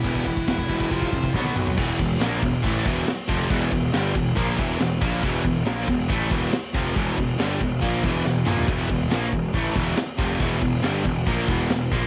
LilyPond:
<<
  \new Staff \with { instrumentName = "Lead electric guitar" } { \time 4/4 \key e \minor \tempo 4 = 139 e'2. r4 | r1 | r1 | r1 |
r1 | r1 | r1 | }
  \new Staff \with { instrumentName = "Distorted electric guitar" } { \clef bass \time 4/4 \key e \minor <e, b, e>8 <e, b,>8 <e, b,>8 <e, b, e>8 <f, c f>8 <f, c>8 <b, fis b>8 <b, fis>8 | <e, b, e>8 <e, b,>8 <ais, f ais>8 <e, b,>8 <a, e a>8 <e, b, e>8 r8 <f, c f>8 | <e, b, e>8 <e, b,>8 <g, d g>8 <e, b,>8 <ais, f ais>8 <e, b, e>8 <e, b,>8 <ais, f ais>8 | <e, b, e>8 <e, b,>8 <ais, f ais>8 <e, b,>8 <a, e a>8 <e, b, e>8 r8 <f, c f>8 |
<e, b, e>8 <e, b,>8 <g, d g>8 <e, b,>8 <ais, f ais>8 <e, b, e>8 <e, b,>8 <ais, f ais>8 | <e, b, e>8 <e, b,>8 <ais, f ais>8 <e, b,>8 <a, e a>8 <e, b, e>8 r8 <f, c f>8 | <e, b, e>8 <e, b,>8 <g, d g>8 <e, b,>8 <ais, f ais>8 <e, b, e>8 <e, b,>8 <ais, f ais>8 | }
  \new Staff \with { instrumentName = "Distorted electric guitar" } { \clef bass \time 4/4 \key e \minor <e, b, e>8 <e, b,>8 <e, b,>8 <e, b, e>8 <f, c f>8 <f, c>8 <b, fis b>8 <b, fis>8 | <e, b, e>8 <e, b,>8 <ais, f ais>8 <e, b,>8 <a, e a>8 <e, b, e>8 r8 <f, c f>8 | <e, b, e>8 <e, b,>8 <g, d g>8 <e, b,>8 <ais, f ais>8 <e, b, e>8 <e, b,>8 <ais, f ais>8 | <e, b, e>8 <e, b,>8 <ais, f ais>8 <e, b,>8 <a, e a>8 <e, b, e>8 r8 <f, c f>8 |
<e, b, e>8 <e, b,>8 <g, d g>8 <e, b,>8 <ais, f ais>8 <e, b, e>8 <e, b,>8 <ais, f ais>8 | <e, b, e>8 <e, b,>8 <ais, f ais>8 <e, b,>8 <a, e a>8 <e, b, e>8 r8 <f, c f>8 | <e, b, e>8 <e, b,>8 <g, d g>8 <e, b,>8 <ais, f ais>8 <e, b, e>8 <e, b,>8 <ais, f ais>8 | }
  \new Staff \with { instrumentName = "Distorted electric guitar" } { \clef bass \time 4/4 \key e \minor <e b e' g' b'>2 <f c' f' c''>4 <b, fis b fis'>4 | <e, b, e>8 <e, b,>8 <ais, f ais>8 <e, b,>8 <a, e a>8 <e, b, e>8 r8 <f, c f>8 | <e, b, e>8 <e, b,>8 <g, d g>8 <e, b,>8 <ais, f ais>8 <e, b, e>8 <e, b,>8 <ais, f ais>8 | <e, b, e>8 <e, b,>8 <ais, f ais>8 <e, b,>8 <a, e a>8 <e, b, e>8 r8 <f, c f>8 |
<e, b, e>8 <e, b,>8 <g, d g>8 <e, b,>8 <ais, f ais>8 <e, b, e>8 <e, b,>8 <ais, f ais>8 | <e, b, e>8 <e, b,>8 <ais, f ais>8 <e, b,>8 <a, e a>8 <e, b, e>8 r8 <f, c f>8 | <e, b, e>8 <e, b,>8 <g, d g>8 <e, b,>8 <ais, f ais>8 <e, b, e>8 <e, b,>8 <ais, f ais>8 | }
  \new Staff \with { instrumentName = "Picked electric bass" } { \clef bass \time 4/4 \key e \minor e,,4 e,,8 e,,8 f,,8 f,,8 b,,8 b,,8 | e,,8 e,,8 ais,,8 e,,8 a,,8 e,,8 r8 f,,8 | e,,8 e,,8 g,,8 e,,8 ais,,8 e,,8 e,,8 ais,,8 | e,,8 e,,8 ais,,8 e,,8 a,,8 e,,8 r8 f,,8 |
e,,8 e,,8 g,,8 e,,8 ais,,8 e,,8 e,,8 ais,,8 | e,,8 e,,8 ais,,8 e,,8 a,,8 e,,8 r8 f,,8 | e,,8 e,,8 g,,8 e,,8 ais,,8 e,,8 e,,8 ais,,8 | }
  \new DrumStaff \with { instrumentName = "Drums" } \drummode { \time 4/4 <bd rb>16 bd16 bd16 bd16 <bd rb sn>16 bd16 bd16 bd16 <bd rb>16 bd16 bd16 bd16 <bd sn>16 tommh16 toml16 tomfh16 | <cymc bd>8 <cymc bd>8 <cymc sn>8 <cymc bd>8 <cymc bd>8 <cymc bd>8 <cymc sn>8 <cymc bd>8 | <cymc bd>8 <cymc bd>8 <cymc sn>8 <cymc bd>8 <cymc bd>8 <cymc bd>8 <cymc sn>8 <cymc bd>8 | <cymc bd>8 <cymc bd>8 <cymc sn>8 <cymc bd>8 <cymc bd>8 <cymc bd>8 <cymc sn>8 <cymc bd>8 |
<cymc bd>8 <cymc bd>8 <cymc sn>8 <cymc bd>8 <cymc bd>8 <cymc bd>8 sn8 toml16 tomfh16 | <cymc bd>8 <cymc bd>8 <cymc sn>8 <cymc bd>8 <cymc bd>8 <cymc bd>8 <cymc sn>8 <cymc bd>8 | <cymc bd>8 <cymc bd>8 <cymc sn>8 <cymc bd>8 <cymc bd>8 <cymc bd>8 <cymc sn>8 <cymc bd>8 | }
>>